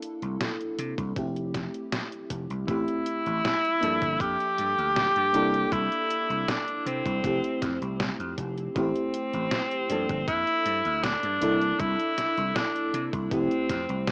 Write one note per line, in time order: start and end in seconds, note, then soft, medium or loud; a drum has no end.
0.00 1.08 A#3 medium
0.00 1.09 D4 medium
0.00 1.10 E4 medium
0.00 1.10 A4 loud
0.00 closed hi-hat medium
0.22 0.36 C2 medium
0.22 closed hi-hat soft
0.41 snare loud
0.41 closed hi-hat medium
0.61 closed hi-hat soft
0.79 0.94 C3 loud
0.79 closed hi-hat medium
0.98 1.12 C2 medium
0.98 kick loud
0.98 closed hi-hat soft
1.16 1.67 F1 medium
1.16 2.61 A3 medium
1.16 2.61 C4 medium
1.16 2.62 E4 medium
1.16 2.62 G4 medium
1.16 kick loud
1.16 closed hi-hat medium
1.36 closed hi-hat soft
1.54 kick medium
1.54 snare medium
1.54 closed hi-hat medium
1.74 closed hi-hat soft
1.92 snare loud
1.92 closed hi-hat medium
2.12 closed hi-hat soft
2.30 2.45 F1 medium
2.30 kick medium
2.30 closed hi-hat medium
2.50 2.64 C2 medium
2.50 closed hi-hat soft
2.67 2.83 A1 medium
2.67 3.74 A3 medium
2.67 3.75 C4 medium
2.67 4.22 E4 loud
2.67 3.76 E4 medium
2.67 3.76 G4 medium
2.67 kick loud
2.67 closed hi-hat medium
2.88 closed hi-hat soft
3.06 closed hi-hat medium
3.26 3.40 A1 medium
3.26 closed hi-hat soft
3.45 snare loud
3.45 closed hi-hat medium
3.65 closed hi-hat soft
3.81 3.98 G2 loud
3.81 5.27 F3 medium
3.81 5.26 A#3 medium
3.81 5.26 D4 medium
3.81 5.28 A4 medium
3.81 closed hi-hat medium
4.02 4.16 G1 medium
4.02 kick loud
4.02 closed hi-hat soft
4.20 4.35 F2 medium
4.20 5.74 G4 loud
4.20 kick loud
4.20 closed hi-hat medium
4.40 closed hi-hat soft
4.58 4.74 G2 medium
4.58 closed hi-hat medium
4.78 5.07 D2 medium
4.78 closed hi-hat soft
4.96 snare loud
4.96 closed hi-hat medium
5.16 5.30 G2 medium
5.16 closed hi-hat soft
5.33 5.64 C2 medium
5.33 7.16 A#3 medium
5.33 7.17 D4 medium
5.33 7.17 E4 medium
5.33 7.18 A4 medium
5.33 closed hi-hat medium
5.54 closed hi-hat soft
5.72 5.87 C2 medium
5.72 6.51 E4 loud
5.72 kick loud
5.72 closed hi-hat medium
5.92 closed hi-hat soft
6.11 closed hi-hat medium
6.30 6.44 C2 medium
6.30 closed hi-hat soft
6.48 6.88 D4 medium
6.48 snare loud
6.48 closed hi-hat medium
6.68 closed hi-hat soft
6.86 7.01 C3 loud
6.86 8.00 C4 medium
6.86 closed hi-hat medium
7.06 7.20 C2 medium
7.06 kick medium
7.06 closed hi-hat soft
7.23 7.39 F1 medium
7.23 8.68 A3 medium
7.23 8.69 C4 medium
7.23 8.69 E4 medium
7.23 8.70 G4 medium
7.23 kick loud
7.23 closed hi-hat medium
7.44 closed hi-hat soft
7.62 7.77 F2 medium
7.62 kick medium
7.62 snare medium
7.62 closed hi-hat medium
7.82 8.10 C2 medium
7.82 closed hi-hat soft
8.00 snare loud
8.00 closed hi-hat medium
8.19 8.33 F2 medium
8.19 closed hi-hat soft
8.38 8.67 F1 loud
8.38 kick medium
8.38 closed hi-hat medium
8.58 closed hi-hat soft
8.75 8.91 A1 loud
8.75 9.82 A3 medium
8.75 10.24 C4 loud
8.75 9.83 C4 medium
8.75 9.83 E4 medium
8.75 9.84 G4 medium
8.75 kick loud
8.75 closed hi-hat medium
8.96 closed hi-hat soft
9.14 closed hi-hat medium
9.33 9.48 A1 medium
9.33 closed hi-hat soft
9.51 snare loud
9.51 closed hi-hat medium
9.71 closed hi-hat soft
9.89 10.05 G2 loud
9.89 11.35 F3 medium
9.89 11.34 A#3 medium
9.89 11.35 D4 medium
9.89 11.36 A4 medium
9.89 closed hi-hat medium
10.09 10.23 G1 medium
10.09 kick medium
10.09 closed hi-hat soft
10.28 10.43 F2 medium
10.28 11.05 E4 loud
10.28 kick loud
10.28 closed hi-hat medium
10.47 closed hi-hat soft
10.65 10.81 G2 medium
10.65 closed hi-hat medium
10.85 11.14 D2 medium
10.85 closed hi-hat soft
11.03 11.81 D4 loud
11.03 snare loud
11.03 closed hi-hat medium
11.23 11.37 G2 medium
11.23 closed hi-hat soft
11.41 11.71 C2 loud
11.41 13.24 A#3 medium
11.41 13.24 D4 medium
11.41 13.25 E4 medium
11.41 13.25 A4 loud
11.41 closed hi-hat medium
11.62 closed hi-hat soft
11.79 11.95 C2 medium
11.79 12.57 E4 loud
11.79 kick loud
11.79 closed hi-hat medium
12.00 closed hi-hat soft
12.18 snare medium
12.18 closed hi-hat medium
12.37 12.52 C2 loud
12.37 closed hi-hat soft
12.56 13.05 D4 loud
12.56 snare loud
12.56 closed hi-hat medium
12.76 closed hi-hat soft
12.94 13.09 C3 loud
12.94 closed hi-hat loud
13.13 13.27 C2 medium
13.13 kick loud
13.13 closed hi-hat soft
13.30 13.47 F1 medium
13.30 14.12 A3 medium
13.30 14.12 C4 medium
13.30 14.12 E4 medium
13.30 14.12 G4 medium
13.30 kick loud
13.30 closed hi-hat medium
13.51 closed hi-hat soft
13.69 13.85 F2 medium
13.69 kick medium
13.69 snare medium
13.69 closed hi-hat medium
13.89 14.12 C2 medium
13.89 closed hi-hat soft
14.07 snare loud
14.07 closed hi-hat medium